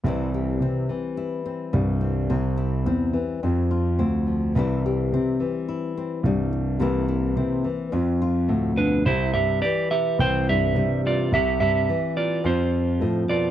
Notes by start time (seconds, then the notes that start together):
0.04 C2 C3 E3 G3 C4
0.08 E4
0.34 G4
0.60 C3 C4
0.89 E3
1.17 E4
1.46 C4
1.73 C2 G2 G3
2.01 C4
2.30 C2 C3 C4
2.57 E4
2.86 E2 C4
3.13 E3
3.43 F2 C4
3.71 F4
3.99 D2 C4
4.27 F3
4.55 C2 C3 E3 G3 C4 E4
4.86 G4
5.12 C3 C4
5.40 E3
5.69 E4
5.97 C4
6.23 C2 G2 G3
6.53 muted nylon-string guitar stroke
6.80 C2 C3 E3 A#3 C4 E4
7.08 E4
7.36 C3 C4
7.64 E3
7.92 F2 C4
8.22 F4
8.49 D2 A2
8.77 B2 D4 B4
9.06 C2 C3 E4 C5
9.34 G2 G4 E5
9.62 E3 G4 D5
9.91 G4 E5
10.19 C2 C4 C5 G5
10.48 G2 G4 E5
10.75 C3 G3
11.07 F4 D5
11.32 C2 C3 G4 E5
11.60 G2 G4 E5
11.89 E3
12.17 F4 D5
12.44 F2 F4 C5
13.00 A2 F3
13.28 B2 F4 D5